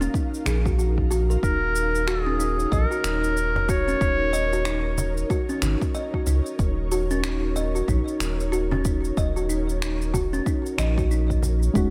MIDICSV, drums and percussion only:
0, 0, Header, 1, 3, 480
1, 0, Start_track
1, 0, Key_signature, -6, "minor"
1, 0, Tempo, 645161
1, 1065, Time_signature, 4, 2, 24, 8
1, 8855, End_track
2, 0, Start_track
2, 0, Title_t, "Cajon"
2, 12, Note_on_c, 9, 38, 31
2, 86, Note_off_c, 9, 38, 0
2, 340, Note_on_c, 9, 36, 79
2, 346, Note_on_c, 9, 38, 69
2, 414, Note_off_c, 9, 36, 0
2, 420, Note_off_c, 9, 38, 0
2, 489, Note_on_c, 9, 38, 59
2, 563, Note_off_c, 9, 38, 0
2, 828, Note_on_c, 9, 38, 57
2, 903, Note_off_c, 9, 38, 0
2, 2649, Note_on_c, 9, 36, 90
2, 2649, Note_on_c, 9, 38, 57
2, 2723, Note_off_c, 9, 36, 0
2, 2723, Note_off_c, 9, 38, 0
2, 3705, Note_on_c, 9, 36, 89
2, 3779, Note_off_c, 9, 36, 0
2, 3847, Note_on_c, 9, 38, 36
2, 3921, Note_off_c, 9, 38, 0
2, 4185, Note_on_c, 9, 38, 70
2, 4189, Note_on_c, 9, 36, 74
2, 4259, Note_off_c, 9, 38, 0
2, 4263, Note_off_c, 9, 36, 0
2, 4331, Note_on_c, 9, 38, 65
2, 4405, Note_off_c, 9, 38, 0
2, 4662, Note_on_c, 9, 38, 59
2, 4737, Note_off_c, 9, 38, 0
2, 6485, Note_on_c, 9, 38, 55
2, 6489, Note_on_c, 9, 36, 84
2, 6560, Note_off_c, 9, 38, 0
2, 6563, Note_off_c, 9, 36, 0
2, 7546, Note_on_c, 9, 36, 87
2, 7620, Note_off_c, 9, 36, 0
2, 7688, Note_on_c, 9, 38, 36
2, 7763, Note_off_c, 9, 38, 0
2, 8021, Note_on_c, 9, 36, 80
2, 8025, Note_on_c, 9, 38, 71
2, 8095, Note_off_c, 9, 36, 0
2, 8100, Note_off_c, 9, 38, 0
2, 8169, Note_on_c, 9, 38, 65
2, 8243, Note_off_c, 9, 38, 0
2, 8500, Note_on_c, 9, 36, 78
2, 8501, Note_on_c, 9, 38, 66
2, 8574, Note_off_c, 9, 36, 0
2, 8576, Note_off_c, 9, 38, 0
2, 8855, End_track
3, 0, Start_track
3, 0, Title_t, "Drums"
3, 13, Note_on_c, 9, 69, 33
3, 87, Note_off_c, 9, 69, 0
3, 105, Note_on_c, 9, 36, 104
3, 111, Note_on_c, 9, 69, 45
3, 179, Note_off_c, 9, 36, 0
3, 185, Note_off_c, 9, 69, 0
3, 254, Note_on_c, 9, 69, 31
3, 328, Note_off_c, 9, 69, 0
3, 344, Note_on_c, 9, 26, 69
3, 347, Note_on_c, 9, 69, 80
3, 419, Note_off_c, 9, 26, 0
3, 422, Note_off_c, 9, 69, 0
3, 488, Note_on_c, 9, 36, 103
3, 493, Note_on_c, 9, 69, 32
3, 562, Note_off_c, 9, 36, 0
3, 568, Note_off_c, 9, 69, 0
3, 589, Note_on_c, 9, 69, 43
3, 663, Note_off_c, 9, 69, 0
3, 727, Note_on_c, 9, 36, 61
3, 802, Note_off_c, 9, 36, 0
3, 827, Note_on_c, 9, 69, 78
3, 902, Note_off_c, 9, 69, 0
3, 972, Note_on_c, 9, 69, 30
3, 1046, Note_off_c, 9, 69, 0
3, 1064, Note_on_c, 9, 36, 110
3, 1070, Note_on_c, 9, 69, 44
3, 1138, Note_off_c, 9, 36, 0
3, 1145, Note_off_c, 9, 69, 0
3, 1307, Note_on_c, 9, 69, 72
3, 1381, Note_off_c, 9, 69, 0
3, 1452, Note_on_c, 9, 69, 31
3, 1526, Note_off_c, 9, 69, 0
3, 1545, Note_on_c, 9, 26, 64
3, 1548, Note_on_c, 9, 69, 39
3, 1619, Note_off_c, 9, 26, 0
3, 1622, Note_off_c, 9, 69, 0
3, 1787, Note_on_c, 9, 69, 72
3, 1862, Note_off_c, 9, 69, 0
3, 1931, Note_on_c, 9, 69, 32
3, 2006, Note_off_c, 9, 69, 0
3, 2024, Note_on_c, 9, 36, 102
3, 2028, Note_on_c, 9, 69, 42
3, 2098, Note_off_c, 9, 36, 0
3, 2102, Note_off_c, 9, 69, 0
3, 2170, Note_on_c, 9, 69, 29
3, 2245, Note_off_c, 9, 69, 0
3, 2264, Note_on_c, 9, 26, 73
3, 2267, Note_on_c, 9, 69, 75
3, 2338, Note_off_c, 9, 26, 0
3, 2341, Note_off_c, 9, 69, 0
3, 2410, Note_on_c, 9, 69, 32
3, 2484, Note_off_c, 9, 69, 0
3, 2508, Note_on_c, 9, 69, 44
3, 2582, Note_off_c, 9, 69, 0
3, 2744, Note_on_c, 9, 36, 99
3, 2746, Note_on_c, 9, 69, 72
3, 2818, Note_off_c, 9, 36, 0
3, 2821, Note_off_c, 9, 69, 0
3, 2890, Note_on_c, 9, 69, 29
3, 2964, Note_off_c, 9, 69, 0
3, 2984, Note_on_c, 9, 36, 110
3, 2986, Note_on_c, 9, 69, 41
3, 3059, Note_off_c, 9, 36, 0
3, 3061, Note_off_c, 9, 69, 0
3, 3227, Note_on_c, 9, 69, 70
3, 3301, Note_off_c, 9, 69, 0
3, 3370, Note_on_c, 9, 69, 31
3, 3444, Note_off_c, 9, 69, 0
3, 3462, Note_on_c, 9, 26, 69
3, 3465, Note_on_c, 9, 69, 38
3, 3536, Note_off_c, 9, 26, 0
3, 3540, Note_off_c, 9, 69, 0
3, 3705, Note_on_c, 9, 69, 75
3, 3780, Note_off_c, 9, 69, 0
3, 3850, Note_on_c, 9, 69, 29
3, 3924, Note_off_c, 9, 69, 0
3, 3944, Note_on_c, 9, 36, 104
3, 3947, Note_on_c, 9, 69, 40
3, 4018, Note_off_c, 9, 36, 0
3, 4021, Note_off_c, 9, 69, 0
3, 4087, Note_on_c, 9, 69, 29
3, 4161, Note_off_c, 9, 69, 0
3, 4181, Note_on_c, 9, 26, 74
3, 4184, Note_on_c, 9, 69, 73
3, 4256, Note_off_c, 9, 26, 0
3, 4259, Note_off_c, 9, 69, 0
3, 4327, Note_on_c, 9, 36, 96
3, 4329, Note_on_c, 9, 69, 31
3, 4401, Note_off_c, 9, 36, 0
3, 4403, Note_off_c, 9, 69, 0
3, 4424, Note_on_c, 9, 69, 39
3, 4499, Note_off_c, 9, 69, 0
3, 4567, Note_on_c, 9, 36, 58
3, 4642, Note_off_c, 9, 36, 0
3, 4662, Note_on_c, 9, 69, 76
3, 4737, Note_off_c, 9, 69, 0
3, 4808, Note_on_c, 9, 69, 29
3, 4882, Note_off_c, 9, 69, 0
3, 4904, Note_on_c, 9, 36, 108
3, 4905, Note_on_c, 9, 69, 39
3, 4978, Note_off_c, 9, 36, 0
3, 4979, Note_off_c, 9, 69, 0
3, 5147, Note_on_c, 9, 69, 70
3, 5221, Note_off_c, 9, 69, 0
3, 5288, Note_on_c, 9, 69, 31
3, 5362, Note_off_c, 9, 69, 0
3, 5384, Note_on_c, 9, 26, 75
3, 5387, Note_on_c, 9, 69, 40
3, 5458, Note_off_c, 9, 26, 0
3, 5461, Note_off_c, 9, 69, 0
3, 5626, Note_on_c, 9, 69, 78
3, 5701, Note_off_c, 9, 69, 0
3, 5770, Note_on_c, 9, 69, 30
3, 5845, Note_off_c, 9, 69, 0
3, 5864, Note_on_c, 9, 36, 98
3, 5868, Note_on_c, 9, 69, 42
3, 5939, Note_off_c, 9, 36, 0
3, 5942, Note_off_c, 9, 69, 0
3, 6011, Note_on_c, 9, 69, 29
3, 6085, Note_off_c, 9, 69, 0
3, 6104, Note_on_c, 9, 26, 73
3, 6107, Note_on_c, 9, 69, 74
3, 6178, Note_off_c, 9, 26, 0
3, 6181, Note_off_c, 9, 69, 0
3, 6252, Note_on_c, 9, 69, 32
3, 6326, Note_off_c, 9, 69, 0
3, 6347, Note_on_c, 9, 69, 42
3, 6422, Note_off_c, 9, 69, 0
3, 6584, Note_on_c, 9, 69, 66
3, 6585, Note_on_c, 9, 36, 94
3, 6658, Note_off_c, 9, 69, 0
3, 6659, Note_off_c, 9, 36, 0
3, 6729, Note_on_c, 9, 69, 30
3, 6804, Note_off_c, 9, 69, 0
3, 6824, Note_on_c, 9, 36, 104
3, 6826, Note_on_c, 9, 69, 44
3, 6899, Note_off_c, 9, 36, 0
3, 6901, Note_off_c, 9, 69, 0
3, 6969, Note_on_c, 9, 69, 29
3, 7044, Note_off_c, 9, 69, 0
3, 7066, Note_on_c, 9, 69, 71
3, 7140, Note_off_c, 9, 69, 0
3, 7212, Note_on_c, 9, 69, 30
3, 7286, Note_off_c, 9, 69, 0
3, 7308, Note_on_c, 9, 26, 71
3, 7311, Note_on_c, 9, 69, 41
3, 7382, Note_off_c, 9, 26, 0
3, 7385, Note_off_c, 9, 69, 0
3, 7453, Note_on_c, 9, 69, 30
3, 7527, Note_off_c, 9, 69, 0
3, 7544, Note_on_c, 9, 36, 59
3, 7549, Note_on_c, 9, 69, 75
3, 7619, Note_off_c, 9, 36, 0
3, 7623, Note_off_c, 9, 69, 0
3, 7691, Note_on_c, 9, 69, 31
3, 7766, Note_off_c, 9, 69, 0
3, 7784, Note_on_c, 9, 36, 106
3, 7788, Note_on_c, 9, 69, 44
3, 7859, Note_off_c, 9, 36, 0
3, 7862, Note_off_c, 9, 69, 0
3, 7931, Note_on_c, 9, 69, 29
3, 8006, Note_off_c, 9, 69, 0
3, 8024, Note_on_c, 9, 26, 78
3, 8027, Note_on_c, 9, 69, 75
3, 8098, Note_off_c, 9, 26, 0
3, 8101, Note_off_c, 9, 69, 0
3, 8167, Note_on_c, 9, 36, 95
3, 8171, Note_on_c, 9, 69, 32
3, 8242, Note_off_c, 9, 36, 0
3, 8246, Note_off_c, 9, 69, 0
3, 8267, Note_on_c, 9, 69, 44
3, 8341, Note_off_c, 9, 69, 0
3, 8408, Note_on_c, 9, 36, 59
3, 8412, Note_on_c, 9, 69, 30
3, 8482, Note_off_c, 9, 36, 0
3, 8486, Note_off_c, 9, 69, 0
3, 8507, Note_on_c, 9, 69, 70
3, 8581, Note_off_c, 9, 69, 0
3, 8650, Note_on_c, 9, 69, 30
3, 8724, Note_off_c, 9, 69, 0
3, 8744, Note_on_c, 9, 36, 121
3, 8747, Note_on_c, 9, 69, 45
3, 8819, Note_off_c, 9, 36, 0
3, 8821, Note_off_c, 9, 69, 0
3, 8855, End_track
0, 0, End_of_file